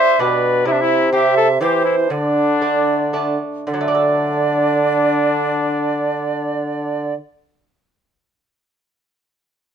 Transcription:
0.00 0.15 D4 medium
0.00 0.15 G4 medium
0.00 0.22 C5 loud
0.00 0.22 E5 medium
0.19 0.62 B2 medium
0.19 0.63 B2 medium
0.19 0.62 D4 medium
0.19 0.63 G4 medium
0.19 0.68 B4 medium
0.19 0.70 D5 medium
0.66 1.57 C3 medium
0.66 1.63 C3 medium
0.66 0.74 E4 loud
0.66 1.14 E5 medium
0.72 0.83 D4 medium
0.81 1.12 E4 loud
1.12 1.57 C4 medium
1.12 1.36 G4 loud
1.12 1.57 G4 medium
1.12 1.61 E5 medium
1.37 1.48 A4 loud
1.61 2.06 E3 medium
1.61 2.10 E3 medium
1.61 2.06 C4 soft
1.61 1.84 G4 medium
1.61 2.07 G4 medium
1.61 2.13 C5 medium
1.85 1.96 E4 medium
2.10 3.36 D3 medium
2.10 3.38 D3 medium
2.10 3.37 D4 loud
2.10 3.41 D5 medium
2.62 3.10 A3 soft
2.62 3.10 D4 medium
3.13 3.63 A3 soft
3.13 3.64 D4 medium
3.67 7.14 D3 medium
3.67 7.14 D4 medium
3.67 7.14 D5 medium
3.74 7.20 F#3 medium
3.81 7.27 A3 medium
3.88 7.35 D4 medium
3.95 7.41 A4 medium

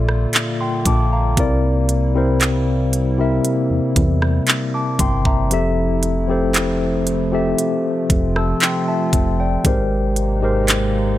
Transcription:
0.00 0.27 A#1 medium
0.00 1.39 A#2 medium
0.00 1.33 D3 medium
0.00 5.47 G3 medium
0.00 1.39 A#3 medium
0.00 5.47 A#3 medium
0.00 1.33 F4 medium
0.00 1.39 F4 medium
0.00 1.39 A4 medium
0.00 1.39 D5 medium
0.00 0.35 E5 loud
0.09 cross-stick medium
0.33 clap loud
0.33 closed hi-hat medium
0.61 0.85 G5 medium
0.61 0.85 C6 medium
0.85 1.39 A#1 loud
0.85 1.11 A5 medium
0.85 1.11 D6 medium
0.85 kick medium
0.85 closed hi-hat medium
1.12 1.61 F5 medium
1.12 1.61 A#5 medium
1.37 3.40 C2 loud
1.37 1.99 C3 medium
1.37 11.18 C3 medium
1.37 1.99 C4 medium
1.37 5.47 E4 medium
1.37 2.00 E4 medium
1.37 2.00 A#4 medium
1.37 2.01 D5 loud
1.37 kick loud
1.37 closed hi-hat medium
1.89 closed hi-hat medium
2.14 2.97 C3 medium
2.14 2.98 C4 medium
2.14 2.98 E4 medium
2.14 2.98 A#4 medium
2.14 2.99 C5 medium
2.41 clap loud
2.41 closed hi-hat medium
2.93 closed hi-hat medium
3.17 4.83 C3 medium
3.17 4.84 C4 medium
3.17 4.84 E4 medium
3.17 4.85 A#4 medium
3.17 3.97 E5 medium
3.45 closed hi-hat medium
3.71 3.81 E2 medium
3.96 4.40 E2 medium
3.96 kick loud
3.96 closed hi-hat medium
4.22 cross-stick medium
4.47 clap loud
4.47 closed hi-hat medium
4.74 4.99 A5 medium
4.74 4.98 D6 medium
4.99 5.53 G1 medium
4.99 5.25 G5 medium
4.99 5.24 C6 medium
4.99 kick medium
4.99 closed hi-hat medium
5.25 5.52 E5 medium
5.25 5.75 A#5 medium
5.25 kick medium
5.50 7.54 F1 loud
5.50 6.13 F3 medium
5.50 9.61 F3 medium
5.50 9.61 A3 medium
5.50 6.13 C4 medium
5.50 7.56 E4 medium
5.50 6.13 G4 medium
5.50 6.14 A4 medium
5.50 6.14 E5 loud
5.50 closed hi-hat medium
6.03 closed hi-hat medium
6.28 7.11 F3 medium
6.28 7.11 C4 medium
6.28 7.12 G4 medium
6.28 7.12 A4 medium
6.28 7.13 C5 medium
6.54 clap loud
6.54 closed hi-hat medium
7.07 closed hi-hat medium
7.31 8.97 F3 medium
7.31 8.97 C4 medium
7.31 8.98 G4 medium
7.31 8.98 A4 medium
7.31 8.11 E5 medium
7.58 9.63 F4 medium
7.58 closed hi-hat medium
8.10 8.54 F1 medium
8.10 kick medium
8.10 closed hi-hat medium
8.36 8.61 A5 medium
8.36 8.61 E6 medium
8.36 cross-stick medium
8.60 8.87 G5 medium
8.60 8.86 C6 medium
8.60 clap loud
8.60 closed hi-hat medium
8.88 9.37 E5 medium
8.88 9.37 A5 medium
9.13 9.57 F1 medium
9.13 kick medium
9.13 closed hi-hat medium
9.40 9.89 D5 medium
9.40 9.89 G5 medium
9.64 11.18 G#1 loud
9.64 10.26 G#2 medium
9.64 11.18 G#3 medium
9.64 10.27 G#3 medium
9.64 11.18 A#3 medium
9.64 11.18 D#4 medium
9.64 10.27 G4 medium
9.64 10.28 A#4 medium
9.64 10.28 C5 medium
9.64 kick loud
9.64 closed hi-hat medium
10.16 closed hi-hat medium
10.41 11.18 G#2 medium
10.41 11.18 G#3 medium
10.41 11.18 G4 medium
10.41 11.18 A#4 medium
10.41 11.18 C5 medium
10.68 clap loud
10.68 closed hi-hat medium

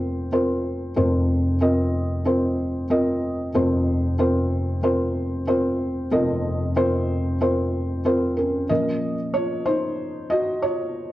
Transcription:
0.00 0.93 F1 medium
0.00 0.93 F2 medium
0.00 0.32 C4 medium
0.00 0.32 F4 medium
0.00 0.32 A#4 medium
0.00 0.33 C5 medium
0.32 0.91 C4 medium
0.32 0.91 F4 medium
0.32 0.91 A#4 medium
0.32 0.91 C5 medium
0.96 3.51 F1 medium
0.96 3.50 F2 medium
0.96 1.55 C4 medium
0.96 1.55 F4 medium
0.96 1.55 A#4 medium
0.96 1.56 C5 medium
1.61 2.20 C4 medium
1.61 2.20 F4 medium
1.61 2.20 A#4 medium
1.61 2.20 D#5 medium
2.25 2.84 C4 medium
2.25 2.84 F4 medium
2.25 2.84 A#4 medium
2.25 2.85 C5 medium
2.90 3.49 C4 medium
2.90 3.49 F4 medium
2.90 3.49 A#4 medium
2.90 3.49 D#5 medium
3.54 6.08 F1 medium
3.54 6.08 F2 medium
3.54 4.13 C4 medium
3.54 4.13 F4 medium
3.54 4.13 A#4 medium
3.54 4.13 C5 medium
4.18 4.77 C4 medium
4.18 4.77 F4 medium
4.18 4.77 A#4 medium
4.18 4.78 C5 medium
4.83 5.42 C4 medium
4.83 5.42 F4 medium
4.83 5.42 A#4 medium
4.83 5.42 C5 medium
5.47 6.06 C4 medium
5.47 6.06 F4 medium
5.47 6.06 A#4 medium
5.47 6.07 C5 medium
6.12 8.66 F1 medium
6.12 8.66 F2 medium
6.12 6.71 C4 medium
6.12 6.71 F4 medium
6.12 6.71 A#4 medium
6.12 6.71 D#5 medium
6.76 7.35 C4 medium
6.76 7.35 F4 medium
6.76 7.35 A#4 medium
6.76 7.35 C5 loud
7.41 7.99 C4 medium
7.41 8.00 F4 medium
7.41 8.00 A#4 medium
7.41 8.00 C5 medium
8.05 8.64 C4 medium
8.05 8.64 F4 medium
8.05 8.35 A#4 medium
8.05 8.64 C5 medium
8.37 8.68 C#4 medium
8.37 8.70 A#4 medium
8.69 9.14 A#2 medium
8.69 9.14 F3 soft
8.69 9.15 C#4 medium
8.69 9.31 A#4 medium
8.69 9.30 D#5 medium
9.34 9.65 F4 medium
9.34 9.67 C#5 medium
9.66 10.27 D#4 medium
9.66 10.26 C5 loud
10.30 10.61 F#4 medium
10.30 10.64 D#5 medium
10.62 11.12 F4 medium
10.62 11.12 C#5 medium

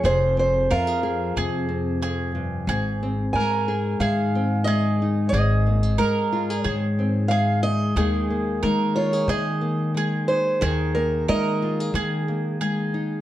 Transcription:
0.00 0.67 F1 loud
0.00 2.00 F2 medium
0.00 0.69 F3 medium
0.00 0.37 C4 medium
0.00 0.70 G#4 medium
0.05 0.69 G#4 medium
0.05 0.35 C5 medium
0.37 1.68 C4 medium
0.37 0.72 C5 medium
0.70 1.34 F2 loud
0.70 2.69 F3 medium
0.70 0.87 F4 medium
0.70 1.35 A#4 medium
0.70 1.33 F5 medium
0.87 1.02 G#4 medium
1.03 3.68 G#4 medium
1.36 2.65 F2 loud
1.36 2.69 C3 medium
1.36 2.02 G#4 medium
1.69 3.02 C4 medium
2.02 2.34 F2 medium
2.02 2.67 G#4 medium
2.35 2.68 G2 medium
2.67 3.31 G#1 loud
2.67 5.29 G#2 medium
2.67 3.34 G#4 medium
3.03 4.34 C4 medium
3.33 3.97 G#2 medium
3.33 4.68 G#3 medium
3.33 5.02 D#4 medium
3.33 4.00 A#4 medium
3.33 4.00 G#5 loud
3.68 5.70 G#4 medium
4.00 5.29 G#2 loud
4.00 5.29 D#3 medium
4.00 4.66 G#4 medium
4.00 4.69 F5 medium
4.35 5.30 C4 medium
4.64 5.70 G#3 medium
4.64 5.32 G#4 medium
4.64 5.28 D#5 medium
5.02 5.99 D#4 medium
5.29 5.96 G#1 loud
5.29 6.64 D#5 medium
5.34 7.94 G#2 medium
5.34 5.98 G#4 medium
5.67 5.83 A#3 medium
5.83 6.97 C4 soft
5.98 6.62 G#2 medium
5.98 7.29 G#3 medium
5.98 7.64 D#4 medium
5.98 6.64 A#4 medium
6.33 6.50 F4 medium
6.50 7.98 G#4 medium
6.64 7.93 G#2 loud
6.64 7.94 D#3 medium
6.64 7.30 G#4 medium
6.64 7.35 C#5 medium
6.99 7.94 C4 medium
7.28 7.96 G#3 medium
7.28 7.96 G#4 medium
7.28 7.61 F5 medium
7.63 7.98 D#4 medium
7.63 8.95 D#5 medium
7.96 8.60 D#2 loud
7.96 9.29 D#3 medium
7.96 8.63 G#3 medium
7.96 8.30 A#3 medium
7.96 8.64 D#4 medium
7.96 8.62 G#4 medium
7.96 8.96 G#4 medium
8.30 9.60 A#3 medium
8.63 9.26 D#3 medium
8.63 9.93 G#3 medium
8.63 10.29 D#4 medium
8.63 9.28 A#4 medium
8.96 9.13 F4 medium
8.96 9.29 C#5 medium
9.13 10.62 G#4 medium
9.28 10.57 D#3 loud
9.28 10.58 D#3 medium
9.28 9.94 G#4 medium
9.28 9.91 D#5 medium
9.61 10.93 A#3 medium
9.94 10.57 G#3 medium
9.94 10.61 G#4 medium
10.28 11.29 D#4 medium
10.28 10.62 C5 medium
10.61 11.24 D#2 loud
10.61 11.93 D#3 medium
10.61 11.26 G#4 medium
10.61 10.92 A#4 medium
10.95 12.26 A#3 medium
10.95 11.25 A#4 medium
11.28 11.91 D#3 medium
11.28 12.59 G#3 medium
11.28 12.93 D#4 medium
11.28 11.93 A#4 medium
11.28 11.90 D#5 loud
11.62 11.80 F4 medium
11.80 13.21 G#4 medium
11.94 13.21 D#3 loud
11.94 13.21 D#3 medium
11.94 12.59 G#4 medium
12.28 13.21 A#3 medium
12.60 13.21 G#3 medium
12.60 13.21 G#4 medium
12.94 13.21 D#4 medium

